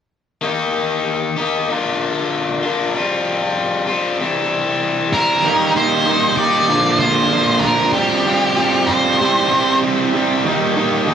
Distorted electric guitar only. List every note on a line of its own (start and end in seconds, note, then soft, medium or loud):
5.43 5.73 D#3 medium
5.43 5.74 G3 loud
5.43 5.75 A#3 medium
5.43 5.75 D#4 loud
5.75 6.04 D#3 medium
5.75 6.05 G3 medium
5.75 6.05 A#3 medium
5.75 6.06 D#4 medium
6.05 6.35 D#3 medium
6.05 6.36 G3 loud
6.05 6.36 A#3 medium
6.05 6.37 D#4 medium
6.37 6.67 D#3 medium
6.37 6.67 G3 medium
6.37 6.67 A#3 medium
6.37 6.68 D#4 medium
6.68 6.99 A#2 medium
6.68 6.99 D3 medium
6.68 7.00 F3 medium
6.68 7.00 A#3 medium
6.68 7.01 F4 loud
7.00 7.31 A#2 medium
7.00 7.31 D3 medium
7.00 7.32 F3 medium
7.00 7.32 A#3 medium
7.00 7.32 F4 medium
7.32 7.62 A#2 medium
7.32 7.63 D3 medium
7.32 7.63 F3 medium
7.32 7.63 A#3 medium
7.32 7.64 F4 loud
7.63 7.93 A#2 medium
7.63 7.93 D3 medium
7.63 7.93 F3 medium
7.63 7.93 A#3 medium
7.63 7.94 F4 medium
7.94 8.25 F3 medium
7.94 8.25 G3 loud
7.94 8.26 C4 loud
7.94 8.26 F4 loud
8.26 8.55 F3 medium
8.26 8.56 G3 medium
8.26 8.57 C4 medium
8.26 8.57 F4 medium
8.57 8.87 F3 medium
8.57 8.88 G3 medium
8.57 8.88 C4 loud
8.57 8.88 F4 loud
8.88 9.18 F3 medium
8.88 9.18 G3 medium
8.88 9.18 C4 medium
8.88 9.19 F4 medium
9.21 9.50 C3 medium
9.21 9.51 G3 medium
9.21 9.52 C4 medium
9.21 9.52 E4 loud
9.52 9.82 C3 medium
9.52 9.82 G3 medium
9.52 9.83 C4 medium
9.52 9.83 E4 medium
9.83 10.13 C3 medium
9.83 10.13 G3 medium
9.83 10.14 C4 medium
9.83 10.14 E4 medium
10.14 10.43 C3 medium
10.14 10.43 G3 medium
10.14 10.44 C4 medium
10.14 10.44 E4 medium
10.44 10.76 D#3 medium
10.44 10.76 G3 medium
10.44 10.77 A#3 loud
10.44 10.77 D#4 loud
10.77 11.06 D#3 medium
10.77 11.07 G3 medium
10.77 11.07 A#3 medium
10.77 11.08 D#4 medium
11.07 11.14 D#3 medium
11.07 11.14 G3 medium
11.07 11.14 A#3 loud
11.07 11.14 D#4 medium